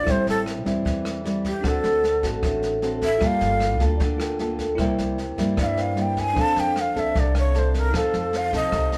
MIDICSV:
0, 0, Header, 1, 6, 480
1, 0, Start_track
1, 0, Tempo, 393443
1, 85, Time_signature, 4, 2, 24, 8
1, 10953, End_track
2, 0, Start_track
2, 0, Title_t, "Shakuhachi"
2, 0, Program_c, 0, 77
2, 0, Note_on_c, 0, 74, 104
2, 135, Note_on_c, 0, 72, 88
2, 153, Note_off_c, 0, 74, 0
2, 350, Note_off_c, 0, 72, 0
2, 361, Note_on_c, 0, 69, 86
2, 494, Note_off_c, 0, 69, 0
2, 1799, Note_on_c, 0, 67, 80
2, 2055, Note_on_c, 0, 69, 84
2, 2073, Note_off_c, 0, 67, 0
2, 2750, Note_off_c, 0, 69, 0
2, 3715, Note_on_c, 0, 76, 98
2, 3981, Note_on_c, 0, 77, 105
2, 4000, Note_off_c, 0, 76, 0
2, 4673, Note_off_c, 0, 77, 0
2, 6852, Note_on_c, 0, 77, 76
2, 6908, Note_on_c, 0, 76, 82
2, 6920, Note_off_c, 0, 77, 0
2, 7090, Note_on_c, 0, 77, 86
2, 7108, Note_off_c, 0, 76, 0
2, 7343, Note_on_c, 0, 79, 79
2, 7361, Note_off_c, 0, 77, 0
2, 7558, Note_on_c, 0, 80, 97
2, 7576, Note_off_c, 0, 79, 0
2, 7823, Note_on_c, 0, 81, 99
2, 7841, Note_off_c, 0, 80, 0
2, 8053, Note_on_c, 0, 79, 90
2, 8071, Note_off_c, 0, 81, 0
2, 8303, Note_on_c, 0, 77, 84
2, 8321, Note_off_c, 0, 79, 0
2, 8529, Note_on_c, 0, 76, 87
2, 8548, Note_off_c, 0, 77, 0
2, 8778, Note_on_c, 0, 74, 79
2, 8796, Note_off_c, 0, 76, 0
2, 8991, Note_off_c, 0, 74, 0
2, 9012, Note_on_c, 0, 73, 85
2, 9254, Note_on_c, 0, 72, 72
2, 9273, Note_off_c, 0, 73, 0
2, 9470, Note_off_c, 0, 72, 0
2, 9486, Note_on_c, 0, 70, 91
2, 9735, Note_on_c, 0, 69, 81
2, 9753, Note_off_c, 0, 70, 0
2, 10207, Note_on_c, 0, 77, 99
2, 10225, Note_off_c, 0, 69, 0
2, 10426, Note_off_c, 0, 77, 0
2, 10438, Note_on_c, 0, 75, 97
2, 10953, Note_off_c, 0, 75, 0
2, 10953, End_track
3, 0, Start_track
3, 0, Title_t, "Tine electric piano"
3, 0, Program_c, 1, 4
3, 0, Control_c, 1, 64, 127
3, 43, Note_on_c, 1, 64, 55
3, 63, Note_on_c, 1, 69, 49
3, 90, Note_on_c, 1, 72, 49
3, 102, Control_c, 1, 64, 0
3, 115, Note_on_c, 1, 79, 61
3, 320, Control_c, 1, 64, 127
3, 1945, Note_off_c, 1, 64, 0
3, 1956, Note_off_c, 1, 69, 0
3, 1962, Note_on_c, 1, 62, 55
3, 1970, Note_off_c, 1, 72, 0
3, 1982, Note_off_c, 1, 79, 0
3, 1988, Note_on_c, 1, 69, 52
3, 2014, Note_on_c, 1, 72, 50
3, 2019, Control_c, 1, 64, 0
3, 2036, Note_on_c, 1, 78, 59
3, 2248, Control_c, 1, 64, 127
3, 3865, Note_off_c, 1, 62, 0
3, 3876, Note_on_c, 1, 65, 58
3, 3878, Note_off_c, 1, 69, 0
3, 3892, Note_off_c, 1, 72, 0
3, 3900, Note_on_c, 1, 69, 53
3, 3903, Note_off_c, 1, 78, 0
3, 3940, Control_c, 1, 64, 0
3, 3949, Note_on_c, 1, 79, 61
3, 4187, Control_c, 1, 64, 127
3, 5076, Note_off_c, 1, 65, 0
3, 5088, Note_off_c, 1, 69, 0
3, 5101, Note_on_c, 1, 65, 51
3, 5113, Note_on_c, 1, 69, 45
3, 5114, Note_off_c, 1, 79, 0
3, 5129, Note_on_c, 1, 70, 43
3, 5135, Note_on_c, 1, 79, 51
3, 5799, Note_on_c, 1, 64, 69
3, 5807, Note_off_c, 1, 70, 0
3, 5822, Note_on_c, 1, 70, 61
3, 5833, Note_off_c, 1, 65, 0
3, 5840, Note_off_c, 1, 69, 0
3, 5850, Note_off_c, 1, 79, 0
3, 5851, Note_on_c, 1, 72, 60
3, 5859, Control_c, 1, 64, 0
3, 5870, Note_on_c, 1, 79, 73
3, 6103, Control_c, 1, 64, 127
3, 6998, Note_off_c, 1, 64, 0
3, 7009, Note_off_c, 1, 70, 0
3, 7023, Note_on_c, 1, 64, 38
3, 7024, Note_off_c, 1, 72, 0
3, 7034, Note_off_c, 1, 79, 0
3, 7037, Note_on_c, 1, 70, 37
3, 7049, Note_on_c, 1, 72, 38
3, 7062, Note_on_c, 1, 79, 46
3, 7729, Note_on_c, 1, 62, 56
3, 7748, Note_on_c, 1, 69, 50
3, 7754, Note_off_c, 1, 64, 0
3, 7760, Note_off_c, 1, 72, 0
3, 7761, Note_off_c, 1, 70, 0
3, 7773, Note_off_c, 1, 79, 0
3, 7775, Note_on_c, 1, 72, 49
3, 7779, Control_c, 1, 64, 0
3, 7800, Note_on_c, 1, 77, 59
3, 8010, Control_c, 1, 64, 127
3, 9628, Note_off_c, 1, 62, 0
3, 9638, Note_off_c, 1, 69, 0
3, 9644, Note_on_c, 1, 63, 53
3, 9651, Note_off_c, 1, 72, 0
3, 9664, Note_off_c, 1, 77, 0
3, 9670, Note_on_c, 1, 69, 50
3, 9695, Note_on_c, 1, 72, 52
3, 9701, Control_c, 1, 64, 0
3, 9717, Note_on_c, 1, 77, 64
3, 9936, Control_c, 1, 64, 127
3, 10953, Note_off_c, 1, 63, 0
3, 10953, Note_off_c, 1, 69, 0
3, 10953, Note_off_c, 1, 72, 0
3, 10953, Note_off_c, 1, 77, 0
3, 10953, End_track
4, 0, Start_track
4, 0, Title_t, "Nylon-string guitar"
4, 0, Program_c, 2, 24
4, 83, Note_on_c, 2, 45, 56
4, 84, Note_on_c, 2, 55, 53
4, 87, Note_on_c, 2, 60, 57
4, 95, Note_on_c, 2, 64, 63
4, 765, Note_off_c, 2, 55, 0
4, 768, Note_off_c, 2, 60, 0
4, 770, Note_off_c, 2, 64, 0
4, 792, Note_on_c, 2, 55, 62
4, 800, Note_on_c, 2, 60, 64
4, 807, Note_on_c, 2, 64, 69
4, 1021, Note_off_c, 2, 45, 0
4, 1036, Note_on_c, 2, 52, 60
4, 1480, Note_off_c, 2, 55, 0
4, 1484, Note_off_c, 2, 60, 0
4, 1488, Note_off_c, 2, 64, 0
4, 1516, Note_on_c, 2, 55, 62
4, 1523, Note_on_c, 2, 60, 51
4, 1526, Note_on_c, 2, 64, 57
4, 1830, Note_off_c, 2, 55, 0
4, 1832, Note_off_c, 2, 60, 0
4, 1835, Note_off_c, 2, 64, 0
4, 1977, Note_off_c, 2, 52, 0
4, 1992, Note_on_c, 2, 50, 61
4, 1997, Note_on_c, 2, 66, 57
4, 1998, Note_on_c, 2, 60, 55
4, 2005, Note_on_c, 2, 69, 61
4, 2478, Note_off_c, 2, 60, 0
4, 2478, Note_off_c, 2, 66, 0
4, 2483, Note_off_c, 2, 69, 0
4, 2722, Note_on_c, 2, 60, 60
4, 2725, Note_on_c, 2, 66, 61
4, 2734, Note_on_c, 2, 69, 70
4, 2935, Note_off_c, 2, 50, 0
4, 2960, Note_on_c, 2, 45, 59
4, 3405, Note_off_c, 2, 60, 0
4, 3408, Note_off_c, 2, 66, 0
4, 3409, Note_off_c, 2, 69, 0
4, 3443, Note_on_c, 2, 60, 59
4, 3448, Note_on_c, 2, 66, 54
4, 3450, Note_on_c, 2, 69, 60
4, 3754, Note_off_c, 2, 60, 0
4, 3754, Note_off_c, 2, 66, 0
4, 3757, Note_off_c, 2, 69, 0
4, 3899, Note_off_c, 2, 45, 0
4, 3913, Note_on_c, 2, 55, 60
4, 3920, Note_on_c, 2, 58, 62
4, 3921, Note_on_c, 2, 65, 61
4, 3929, Note_on_c, 2, 69, 60
4, 4602, Note_off_c, 2, 58, 0
4, 4605, Note_off_c, 2, 65, 0
4, 4609, Note_off_c, 2, 69, 0
4, 4639, Note_on_c, 2, 58, 72
4, 4645, Note_on_c, 2, 65, 63
4, 4646, Note_on_c, 2, 69, 69
4, 4857, Note_off_c, 2, 55, 0
4, 4887, Note_on_c, 2, 50, 66
4, 5324, Note_off_c, 2, 58, 0
4, 5326, Note_off_c, 2, 65, 0
4, 5327, Note_off_c, 2, 69, 0
4, 5365, Note_on_c, 2, 58, 58
4, 5373, Note_on_c, 2, 65, 60
4, 5380, Note_on_c, 2, 69, 62
4, 5674, Note_off_c, 2, 58, 0
4, 5678, Note_off_c, 2, 65, 0
4, 5682, Note_off_c, 2, 69, 0
4, 5822, Note_off_c, 2, 50, 0
4, 5834, Note_on_c, 2, 48, 54
4, 5838, Note_on_c, 2, 55, 55
4, 5846, Note_on_c, 2, 58, 58
4, 5847, Note_on_c, 2, 64, 63
4, 6318, Note_off_c, 2, 55, 0
4, 6320, Note_off_c, 2, 58, 0
4, 6324, Note_off_c, 2, 64, 0
4, 6562, Note_on_c, 2, 55, 67
4, 6567, Note_on_c, 2, 58, 66
4, 6572, Note_on_c, 2, 64, 76
4, 6777, Note_off_c, 2, 48, 0
4, 6795, Note_on_c, 2, 43, 60
4, 7245, Note_off_c, 2, 55, 0
4, 7248, Note_off_c, 2, 58, 0
4, 7250, Note_off_c, 2, 64, 0
4, 7274, Note_on_c, 2, 55, 54
4, 7279, Note_on_c, 2, 58, 54
4, 7287, Note_on_c, 2, 64, 55
4, 7589, Note_off_c, 2, 55, 0
4, 7591, Note_off_c, 2, 58, 0
4, 7595, Note_off_c, 2, 64, 0
4, 7736, Note_off_c, 2, 43, 0
4, 7766, Note_on_c, 2, 53, 54
4, 7774, Note_on_c, 2, 60, 56
4, 7775, Note_on_c, 2, 62, 53
4, 7782, Note_on_c, 2, 69, 63
4, 8245, Note_off_c, 2, 60, 0
4, 8247, Note_off_c, 2, 62, 0
4, 8251, Note_off_c, 2, 69, 0
4, 8485, Note_on_c, 2, 60, 65
4, 8495, Note_on_c, 2, 62, 62
4, 8495, Note_on_c, 2, 69, 65
4, 8702, Note_off_c, 2, 53, 0
4, 8725, Note_on_c, 2, 48, 62
4, 9167, Note_off_c, 2, 60, 0
4, 9169, Note_off_c, 2, 62, 0
4, 9171, Note_off_c, 2, 69, 0
4, 9201, Note_on_c, 2, 60, 57
4, 9206, Note_on_c, 2, 62, 58
4, 9212, Note_on_c, 2, 69, 67
4, 9644, Note_off_c, 2, 60, 0
4, 9647, Note_off_c, 2, 62, 0
4, 9650, Note_off_c, 2, 69, 0
4, 9661, Note_off_c, 2, 48, 0
4, 9674, Note_on_c, 2, 53, 57
4, 9678, Note_on_c, 2, 60, 63
4, 9679, Note_on_c, 2, 63, 59
4, 9685, Note_on_c, 2, 69, 65
4, 10362, Note_off_c, 2, 60, 0
4, 10363, Note_off_c, 2, 63, 0
4, 10366, Note_off_c, 2, 69, 0
4, 10400, Note_on_c, 2, 60, 67
4, 10404, Note_on_c, 2, 63, 66
4, 10411, Note_on_c, 2, 69, 73
4, 10615, Note_off_c, 2, 53, 0
4, 10639, Note_on_c, 2, 48, 59
4, 10953, Note_off_c, 2, 48, 0
4, 10953, Note_off_c, 2, 60, 0
4, 10953, Note_off_c, 2, 63, 0
4, 10953, Note_off_c, 2, 69, 0
4, 10953, End_track
5, 0, Start_track
5, 0, Title_t, "Upright bass"
5, 0, Program_c, 3, 32
5, 84, Note_on_c, 3, 33, 90
5, 308, Note_off_c, 3, 33, 0
5, 329, Note_on_c, 3, 33, 87
5, 806, Note_off_c, 3, 33, 0
5, 806, Note_on_c, 3, 40, 91
5, 1029, Note_off_c, 3, 40, 0
5, 1048, Note_on_c, 3, 40, 96
5, 1958, Note_off_c, 3, 40, 0
5, 2001, Note_on_c, 3, 38, 85
5, 2226, Note_off_c, 3, 38, 0
5, 2240, Note_on_c, 3, 38, 96
5, 2721, Note_on_c, 3, 33, 90
5, 2739, Note_off_c, 3, 38, 0
5, 2946, Note_off_c, 3, 33, 0
5, 2961, Note_on_c, 3, 33, 107
5, 3875, Note_off_c, 3, 33, 0
5, 3920, Note_on_c, 3, 31, 88
5, 4146, Note_off_c, 3, 31, 0
5, 4163, Note_on_c, 3, 31, 99
5, 4641, Note_off_c, 3, 31, 0
5, 4641, Note_on_c, 3, 38, 88
5, 4866, Note_off_c, 3, 38, 0
5, 4882, Note_on_c, 3, 38, 112
5, 5795, Note_off_c, 3, 38, 0
5, 5841, Note_on_c, 3, 36, 96
5, 6066, Note_off_c, 3, 36, 0
5, 6087, Note_on_c, 3, 36, 88
5, 6564, Note_off_c, 3, 36, 0
5, 6564, Note_on_c, 3, 43, 93
5, 6788, Note_off_c, 3, 43, 0
5, 6802, Note_on_c, 3, 43, 109
5, 7715, Note_off_c, 3, 43, 0
5, 7766, Note_on_c, 3, 41, 97
5, 7989, Note_off_c, 3, 41, 0
5, 8006, Note_on_c, 3, 41, 98
5, 8489, Note_off_c, 3, 41, 0
5, 8489, Note_on_c, 3, 36, 91
5, 8710, Note_off_c, 3, 36, 0
5, 8729, Note_on_c, 3, 36, 106
5, 9638, Note_off_c, 3, 36, 0
5, 9689, Note_on_c, 3, 41, 97
5, 9910, Note_off_c, 3, 41, 0
5, 9928, Note_on_c, 3, 41, 90
5, 10404, Note_on_c, 3, 36, 93
5, 10423, Note_off_c, 3, 41, 0
5, 10628, Note_off_c, 3, 36, 0
5, 10644, Note_on_c, 3, 36, 101
5, 10953, Note_off_c, 3, 36, 0
5, 10953, End_track
6, 0, Start_track
6, 0, Title_t, "Drums"
6, 81, Note_on_c, 9, 37, 60
6, 81, Note_on_c, 9, 38, 25
6, 85, Note_on_c, 9, 36, 65
6, 203, Note_off_c, 9, 37, 0
6, 203, Note_off_c, 9, 38, 0
6, 207, Note_off_c, 9, 36, 0
6, 327, Note_on_c, 9, 38, 26
6, 449, Note_off_c, 9, 38, 0
6, 565, Note_on_c, 9, 37, 55
6, 565, Note_on_c, 9, 38, 24
6, 687, Note_off_c, 9, 37, 0
6, 687, Note_off_c, 9, 38, 0
6, 806, Note_on_c, 9, 36, 25
6, 808, Note_on_c, 9, 38, 28
6, 928, Note_off_c, 9, 36, 0
6, 930, Note_off_c, 9, 38, 0
6, 1046, Note_on_c, 9, 36, 59
6, 1046, Note_on_c, 9, 38, 25
6, 1168, Note_off_c, 9, 36, 0
6, 1168, Note_off_c, 9, 38, 0
6, 1283, Note_on_c, 9, 37, 63
6, 1283, Note_on_c, 9, 38, 25
6, 1405, Note_off_c, 9, 37, 0
6, 1405, Note_off_c, 9, 38, 0
6, 1530, Note_on_c, 9, 38, 26
6, 1652, Note_off_c, 9, 38, 0
6, 1763, Note_on_c, 9, 38, 23
6, 1764, Note_on_c, 9, 36, 24
6, 1885, Note_off_c, 9, 38, 0
6, 1886, Note_off_c, 9, 36, 0
6, 2000, Note_on_c, 9, 37, 65
6, 2000, Note_on_c, 9, 38, 26
6, 2002, Note_on_c, 9, 36, 64
6, 2122, Note_off_c, 9, 37, 0
6, 2122, Note_off_c, 9, 38, 0
6, 2124, Note_off_c, 9, 36, 0
6, 2242, Note_on_c, 9, 38, 26
6, 2364, Note_off_c, 9, 38, 0
6, 2486, Note_on_c, 9, 38, 23
6, 2608, Note_off_c, 9, 38, 0
6, 2722, Note_on_c, 9, 38, 28
6, 2723, Note_on_c, 9, 36, 27
6, 2844, Note_off_c, 9, 38, 0
6, 2845, Note_off_c, 9, 36, 0
6, 2962, Note_on_c, 9, 36, 64
6, 2963, Note_on_c, 9, 37, 58
6, 2963, Note_on_c, 9, 38, 26
6, 3084, Note_off_c, 9, 36, 0
6, 3085, Note_off_c, 9, 37, 0
6, 3085, Note_off_c, 9, 38, 0
6, 3202, Note_on_c, 9, 38, 26
6, 3324, Note_off_c, 9, 38, 0
6, 3444, Note_on_c, 9, 38, 25
6, 3566, Note_off_c, 9, 38, 0
6, 3678, Note_on_c, 9, 38, 24
6, 3680, Note_on_c, 9, 36, 24
6, 3800, Note_off_c, 9, 38, 0
6, 3802, Note_off_c, 9, 36, 0
6, 3913, Note_on_c, 9, 37, 65
6, 3913, Note_on_c, 9, 38, 27
6, 3919, Note_on_c, 9, 36, 65
6, 4035, Note_off_c, 9, 37, 0
6, 4035, Note_off_c, 9, 38, 0
6, 4041, Note_off_c, 9, 36, 0
6, 4156, Note_on_c, 9, 38, 25
6, 4278, Note_off_c, 9, 38, 0
6, 4396, Note_on_c, 9, 37, 60
6, 4396, Note_on_c, 9, 38, 24
6, 4518, Note_off_c, 9, 37, 0
6, 4518, Note_off_c, 9, 38, 0
6, 4635, Note_on_c, 9, 38, 28
6, 4640, Note_on_c, 9, 36, 26
6, 4757, Note_off_c, 9, 38, 0
6, 4762, Note_off_c, 9, 36, 0
6, 4876, Note_on_c, 9, 38, 25
6, 4881, Note_on_c, 9, 36, 57
6, 4998, Note_off_c, 9, 38, 0
6, 5003, Note_off_c, 9, 36, 0
6, 5119, Note_on_c, 9, 37, 66
6, 5119, Note_on_c, 9, 38, 26
6, 5241, Note_off_c, 9, 37, 0
6, 5241, Note_off_c, 9, 38, 0
6, 5356, Note_on_c, 9, 38, 26
6, 5478, Note_off_c, 9, 38, 0
6, 5595, Note_on_c, 9, 38, 25
6, 5600, Note_on_c, 9, 36, 23
6, 5717, Note_off_c, 9, 38, 0
6, 5722, Note_off_c, 9, 36, 0
6, 5834, Note_on_c, 9, 37, 64
6, 5834, Note_on_c, 9, 38, 26
6, 5840, Note_on_c, 9, 36, 64
6, 5956, Note_off_c, 9, 37, 0
6, 5956, Note_off_c, 9, 38, 0
6, 5962, Note_off_c, 9, 36, 0
6, 6080, Note_on_c, 9, 38, 25
6, 6202, Note_off_c, 9, 38, 0
6, 6322, Note_on_c, 9, 38, 25
6, 6444, Note_off_c, 9, 38, 0
6, 6562, Note_on_c, 9, 36, 28
6, 6563, Note_on_c, 9, 38, 28
6, 6684, Note_off_c, 9, 36, 0
6, 6685, Note_off_c, 9, 38, 0
6, 6799, Note_on_c, 9, 37, 62
6, 6799, Note_on_c, 9, 38, 26
6, 6803, Note_on_c, 9, 36, 61
6, 6921, Note_off_c, 9, 37, 0
6, 6921, Note_off_c, 9, 38, 0
6, 6925, Note_off_c, 9, 36, 0
6, 7044, Note_on_c, 9, 38, 26
6, 7166, Note_off_c, 9, 38, 0
6, 7281, Note_on_c, 9, 38, 24
6, 7403, Note_off_c, 9, 38, 0
6, 7525, Note_on_c, 9, 36, 23
6, 7526, Note_on_c, 9, 38, 24
6, 7647, Note_off_c, 9, 36, 0
6, 7648, Note_off_c, 9, 38, 0
6, 7764, Note_on_c, 9, 36, 68
6, 7764, Note_on_c, 9, 37, 65
6, 7764, Note_on_c, 9, 38, 27
6, 7886, Note_off_c, 9, 36, 0
6, 7886, Note_off_c, 9, 37, 0
6, 7886, Note_off_c, 9, 38, 0
6, 8008, Note_on_c, 9, 38, 27
6, 8130, Note_off_c, 9, 38, 0
6, 8247, Note_on_c, 9, 37, 61
6, 8247, Note_on_c, 9, 38, 24
6, 8369, Note_off_c, 9, 37, 0
6, 8369, Note_off_c, 9, 38, 0
6, 8489, Note_on_c, 9, 36, 27
6, 8496, Note_on_c, 9, 38, 27
6, 8611, Note_off_c, 9, 36, 0
6, 8618, Note_off_c, 9, 38, 0
6, 8728, Note_on_c, 9, 36, 63
6, 8731, Note_on_c, 9, 38, 25
6, 8850, Note_off_c, 9, 36, 0
6, 8853, Note_off_c, 9, 38, 0
6, 8966, Note_on_c, 9, 37, 65
6, 8966, Note_on_c, 9, 38, 27
6, 9088, Note_off_c, 9, 37, 0
6, 9088, Note_off_c, 9, 38, 0
6, 9206, Note_on_c, 9, 38, 26
6, 9328, Note_off_c, 9, 38, 0
6, 9446, Note_on_c, 9, 36, 26
6, 9446, Note_on_c, 9, 38, 25
6, 9568, Note_off_c, 9, 36, 0
6, 9568, Note_off_c, 9, 38, 0
6, 9685, Note_on_c, 9, 37, 67
6, 9685, Note_on_c, 9, 38, 28
6, 9687, Note_on_c, 9, 36, 66
6, 9807, Note_off_c, 9, 37, 0
6, 9807, Note_off_c, 9, 38, 0
6, 9809, Note_off_c, 9, 36, 0
6, 9925, Note_on_c, 9, 38, 25
6, 10047, Note_off_c, 9, 38, 0
6, 10162, Note_on_c, 9, 38, 24
6, 10284, Note_off_c, 9, 38, 0
6, 10404, Note_on_c, 9, 36, 28
6, 10404, Note_on_c, 9, 38, 26
6, 10526, Note_off_c, 9, 36, 0
6, 10526, Note_off_c, 9, 38, 0
6, 10641, Note_on_c, 9, 37, 63
6, 10641, Note_on_c, 9, 38, 24
6, 10643, Note_on_c, 9, 36, 62
6, 10763, Note_off_c, 9, 37, 0
6, 10763, Note_off_c, 9, 38, 0
6, 10765, Note_off_c, 9, 36, 0
6, 10884, Note_on_c, 9, 38, 26
6, 10953, Note_off_c, 9, 38, 0
6, 10953, End_track
0, 0, End_of_file